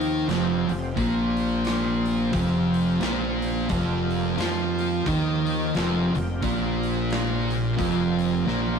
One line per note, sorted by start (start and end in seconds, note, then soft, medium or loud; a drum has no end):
0.00 0.25 D#2 medium
0.00 0.28 D#3 loud
0.00 8.79 F3 medium
0.00 3.65 C4 medium
0.00 0.28 D#4 loud
0.00 8.79 G4 medium
0.00 open hi-hat medium
0.28 0.66 F1 medium
0.28 0.68 F2 medium
0.28 0.68 F3 loud
0.28 snare medium
0.28 open hi-hat medium
0.69 0.95 F1 medium
0.69 0.91 F2 medium
0.69 open hi-hat medium
0.96 2.29 A#1 loud
0.96 2.32 A#2 medium
0.96 2.32 A#3 medium
0.96 kick loud
0.96 open hi-hat medium
1.37 open hi-hat medium
1.65 snare loud
1.65 open hi-hat medium
2.06 open hi-hat medium
2.33 2.97 F1 loud
2.33 3.00 F2 loud
2.33 3.01 F3 loud
2.33 kick loud
2.33 open hi-hat medium
2.74 open hi-hat medium
3.01 3.65 A#1 medium
3.01 3.69 A#2 medium
3.01 3.69 A#3 loud
3.01 snare loud
3.01 open hi-hat medium
3.42 open hi-hat medium
3.69 4.34 F1 medium
3.69 4.37 F2 medium
3.69 4.37 F3 loud
3.69 8.79 A#3 medium
3.69 kick loud
3.69 open hi-hat medium
4.11 open hi-hat medium
4.38 5.02 F2 medium
4.38 5.05 F3 loud
4.38 5.06 F4 loud
4.38 snare loud
4.38 open hi-hat medium
4.79 open hi-hat medium
5.06 5.70 D#2 medium
5.06 5.74 D#3 medium
5.06 5.74 D#4 loud
5.06 kick loud
5.06 open hi-hat medium
5.47 open hi-hat medium
5.75 6.12 F1 medium
5.75 6.14 F2 loud
5.75 6.14 F3 loud
5.75 snare loud
5.75 open hi-hat medium
6.15 6.40 F1 medium
6.15 6.37 F2 medium
6.15 open hi-hat medium
6.42 7.75 A#1 loud
6.42 7.78 A#2 loud
6.42 7.79 A#3 loud
6.42 kick loud
6.42 open hi-hat medium
6.83 open hi-hat medium
7.10 snare loud
7.10 open hi-hat medium
7.51 open hi-hat medium
7.78 8.43 F1 medium
7.78 8.46 F2 medium
7.78 8.46 F3 loud
7.78 kick loud
7.78 open hi-hat medium
8.19 open hi-hat medium
8.47 8.79 A#1 medium
8.47 8.79 A#2 medium
8.47 8.79 A#3 medium
8.47 snare medium
8.66 high tom medium